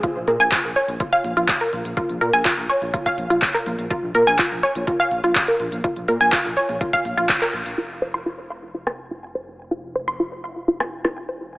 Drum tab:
CC |----------------|----------------|----------------|----------------|
HH |x-oxx-oxx-oxx-ox|xxoxx-ooxxoxx-ox|x-oxx-oxx-oxx-ox|xxoxxxooxxoxxxox|
CP |----x-------x---|----x-------xx--|----x-------x---|----x-------xx--|
SD |----------------|----------------|----------------|----------------|
BD |o---o---o---o---|o---o---oo--o---|o---o---o---o---|o---o---oo--o---|

CC |x---------------|----------------|
HH |----------------|----------------|
CP |----------------|----------------|
SD |---------r------|---------r-r----|
BD |----------------|----------------|